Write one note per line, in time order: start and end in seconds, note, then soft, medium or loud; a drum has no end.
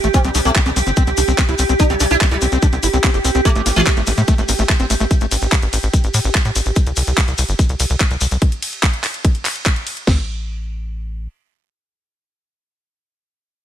0.00 0.10 A1 medium
0.00 0.08 A3 medium
0.00 6.77 G4 medium
0.00 closed hi-hat medium
0.00 maracas soft
0.14 0.19 C4 loud
0.14 0.18 C4 loud
0.14 kick loud
0.14 closed hi-hat medium
0.14 maracas medium
0.24 0.30 C2 medium
0.24 0.29 C3 medium
0.24 0.31 C4 loud
0.24 closed hi-hat medium
0.24 maracas soft
0.35 0.41 C2 loud
0.35 0.40 C3 medium
0.35 0.37 D4 medium
0.35 open hi-hat loud
0.35 maracas loud
0.45 0.51 C2 medium
0.45 0.50 A3 loud
0.45 0.51 C4 medium
0.45 closed hi-hat medium
0.45 maracas soft
0.56 0.60 C3 medium
0.56 0.60 C4 loud
0.56 kick loud
0.56 clap loud
0.56 closed hi-hat medium
0.56 maracas medium
0.66 0.72 C2 medium
0.66 0.71 C3 medium
0.66 0.70 C4 loud
0.66 closed hi-hat medium
0.66 maracas soft
0.76 0.82 C2 loud
0.76 0.79 C4 medium
0.76 open hi-hat loud
0.76 maracas loud
0.87 0.92 G1 medium
0.87 0.91 C4 medium
0.87 closed hi-hat medium
0.87 maracas soft
0.96 1.03 C4 loud
0.96 kick loud
0.96 closed hi-hat medium
0.96 maracas medium
1.07 1.13 C2 medium
1.07 1.10 C4 loud
1.07 closed hi-hat medium
1.07 maracas soft
1.17 1.23 C2 loud
1.17 1.20 D4 medium
1.17 open hi-hat loud
1.17 maracas loud
1.28 1.34 C2 loud
1.28 1.32 C4 medium
1.28 closed hi-hat medium
1.28 maracas soft
1.38 1.42 C4 medium
1.38 kick loud
1.38 clap loud
1.38 closed hi-hat medium
1.38 maracas soft
1.49 1.54 C2 medium
1.49 1.55 E4 medium
1.49 closed hi-hat medium
1.49 maracas soft
1.58 1.65 C2 loud
1.58 1.63 C4 medium
1.58 open hi-hat loud
1.58 maracas loud
1.69 1.75 C2 medium
1.69 1.73 C4 medium
1.69 closed hi-hat medium
1.69 maracas soft
1.79 1.84 D4 loud
1.79 kick loud
1.79 closed hi-hat medium
1.79 maracas medium
1.90 1.96 C2 medium
1.90 1.95 G3 medium
1.90 1.93 C4 loud
1.90 closed hi-hat medium
1.90 maracas soft
2.00 2.06 C2 loud
2.00 2.05 G3 medium
2.00 2.03 D4 medium
2.00 open hi-hat loud
2.00 maracas loud
2.11 2.17 C2 medium
2.11 2.13 D4 medium
2.11 2.15 E4 loud
2.11 closed hi-hat medium
2.11 maracas soft
2.21 2.26 G3 medium
2.21 2.25 C4 medium
2.21 kick loud
2.21 clap loud
2.21 closed hi-hat medium
2.21 maracas medium
2.31 2.37 C2 medium
2.31 2.36 G3 medium
2.31 2.38 E4 medium
2.31 closed hi-hat soft
2.31 maracas soft
2.41 2.48 C2 loud
2.41 2.46 C4 medium
2.41 open hi-hat loud
2.41 maracas medium
2.52 2.58 C2 loud
2.52 2.58 C4 medium
2.52 closed hi-hat medium
2.52 maracas soft
2.62 2.67 D4 loud
2.62 kick loud
2.62 closed hi-hat medium
2.62 maracas medium
2.72 2.79 C2 medium
2.72 2.75 C4 loud
2.72 closed hi-hat soft
2.72 maracas soft
2.83 2.89 G1 loud
2.83 2.87 E4 medium
2.83 open hi-hat loud
2.83 maracas loud
2.93 2.99 C2 loud
2.93 2.98 C4 medium
2.93 closed hi-hat soft
2.93 maracas soft
3.04 3.10 C4 medium
3.04 kick loud
3.04 clap loud
3.04 closed hi-hat medium
3.04 maracas medium
3.14 3.20 G1 medium
3.14 3.18 G4 medium
3.14 closed hi-hat medium
3.14 maracas soft
3.25 3.30 C2 loud
3.25 3.31 C4 medium
3.25 open hi-hat loud
3.25 maracas medium
3.34 3.41 C2 medium
3.34 3.41 C4 medium
3.34 closed hi-hat soft
3.34 maracas soft
3.45 3.49 A3 loud
3.45 3.50 A3 loud
3.45 kick loud
3.45 closed hi-hat medium
3.45 maracas medium
3.56 3.61 A1 medium
3.56 3.60 A2 medium
3.56 3.62 A3 loud
3.56 closed hi-hat medium
3.56 maracas soft
3.66 3.72 A1 loud
3.66 3.71 A2 medium
3.66 3.68 A#3 medium
3.66 open hi-hat loud
3.66 ride medium
3.66 maracas medium
3.76 3.82 A1 medium
3.76 3.81 E3 loud
3.76 3.82 A3 medium
3.76 closed hi-hat medium
3.76 maracas soft
3.86 3.91 A3 loud
3.86 kick loud
3.86 clap loud
3.86 closed hi-hat medium
3.86 maracas medium
3.97 4.03 A1 medium
3.97 4.02 A2 medium
3.97 4.01 A3 loud
3.97 closed hi-hat soft
3.97 maracas soft
4.06 4.13 A1 loud
4.06 4.10 A3 medium
4.06 open hi-hat loud
4.06 ride medium
4.06 maracas loud
4.17 4.23 A2 medium
4.17 4.22 A3 medium
4.17 closed hi-hat medium
4.17 maracas soft
4.28 4.34 A3 loud
4.28 kick loud
4.28 closed hi-hat medium
4.28 maracas medium
4.38 4.44 A1 medium
4.38 4.41 A3 loud
4.38 closed hi-hat soft
4.38 maracas soft
4.49 4.54 A1 loud
4.49 4.51 A#3 medium
4.49 open hi-hat loud
4.49 ride medium
4.49 maracas medium
4.59 4.65 A1 loud
4.59 4.63 A3 medium
4.59 closed hi-hat medium
4.59 maracas soft
4.69 4.73 A3 medium
4.69 kick loud
4.69 clap loud
4.69 closed hi-hat medium
4.69 maracas medium
4.79 4.85 A1 medium
4.79 4.86 C4 medium
4.79 closed hi-hat medium
4.79 maracas soft
4.90 4.96 A1 loud
4.90 4.94 A3 medium
4.90 open hi-hat medium
4.90 ride medium
4.90 maracas medium
5.00 5.06 A1 loud
5.00 5.04 A3 medium
5.00 closed hi-hat medium
5.00 maracas soft
5.11 kick loud
5.11 closed hi-hat medium
5.11 maracas medium
5.21 5.27 A1 medium
5.21 closed hi-hat medium
5.21 maracas soft
5.31 5.37 A1 loud
5.31 open hi-hat loud
5.31 ride medium
5.31 maracas medium
5.42 5.48 A1 medium
5.42 closed hi-hat medium
5.42 maracas soft
5.52 kick loud
5.52 clap loud
5.52 closed hi-hat medium
5.52 maracas medium
5.62 5.68 A1 medium
5.62 closed hi-hat medium
5.62 maracas soft
5.73 5.79 A1 loud
5.73 open hi-hat loud
5.73 ride medium
5.73 maracas medium
5.83 5.89 A1 medium
5.83 closed hi-hat medium
5.83 maracas soft
5.93 kick loud
5.93 closed hi-hat medium
5.93 maracas soft
6.04 6.10 A1 medium
6.04 closed hi-hat medium
6.04 maracas soft
6.14 6.20 A2 loud
6.14 open hi-hat loud
6.14 ride medium
6.14 maracas medium
6.25 6.30 A1 loud
6.25 closed hi-hat medium
6.25 maracas soft
6.35 kick loud
6.35 clap loud
6.35 closed hi-hat loud
6.35 maracas soft
6.45 6.51 A2 medium
6.45 closed hi-hat medium
6.45 maracas soft
6.55 6.61 A1 loud
6.55 open hi-hat medium
6.55 ride medium
6.55 maracas loud
6.66 6.72 A1 loud
6.66 closed hi-hat medium
6.66 maracas soft
6.76 kick loud
6.76 closed hi-hat loud
6.76 maracas medium
6.87 6.92 C2 medium
6.87 closed hi-hat medium
6.87 maracas soft
6.96 7.03 C2 loud
6.96 open hi-hat loud
6.96 ride medium
6.96 maracas medium
7.07 7.13 C2 medium
7.07 closed hi-hat medium
7.07 maracas soft
7.18 kick loud
7.18 clap loud
7.18 closed hi-hat loud
7.18 maracas medium
7.28 7.34 C2 medium
7.28 closed hi-hat medium
7.28 maracas soft
7.38 7.44 C2 loud
7.38 open hi-hat loud
7.38 ride medium
7.38 maracas medium
7.49 7.54 G1 medium
7.49 closed hi-hat medium
7.49 maracas soft
7.59 kick loud
7.59 closed hi-hat loud
7.59 maracas medium
7.69 7.75 C2 medium
7.69 closed hi-hat medium
7.69 maracas soft
7.80 7.85 C2 loud
7.80 open hi-hat loud
7.80 ride medium
7.80 maracas medium
7.90 7.96 C2 loud
7.90 closed hi-hat medium
7.90 maracas soft
8.00 kick loud
8.00 clap loud
8.00 closed hi-hat loud
8.00 maracas soft
8.11 8.17 C2 medium
8.11 closed hi-hat medium
8.11 maracas soft
8.21 8.27 C2 loud
8.21 open hi-hat medium
8.21 ride medium
8.21 maracas medium
8.31 8.37 C2 medium
8.31 closed hi-hat medium
8.31 maracas soft
8.42 kick loud
8.42 closed hi-hat loud
8.52 closed hi-hat medium
8.62 open hi-hat loud
8.62 ride medium
8.73 closed hi-hat medium
8.83 kick loud
8.83 clap loud
8.83 closed hi-hat loud
8.93 closed hi-hat medium
9.04 clap medium
9.04 open hi-hat medium
9.04 ride medium
9.14 closed hi-hat medium
9.25 kick loud
9.25 closed hi-hat loud
9.35 closed hi-hat medium
9.45 clap medium
9.45 open hi-hat loud
9.45 ride medium
9.56 closed hi-hat medium
9.66 kick loud
9.66 clap loud
9.66 closed hi-hat loud
9.76 closed hi-hat medium
9.87 open hi-hat medium
9.87 ride medium
9.97 closed hi-hat medium
10.07 11.27 A1 loud
10.07 kick loud
10.07 snare loud
10.07 crash medium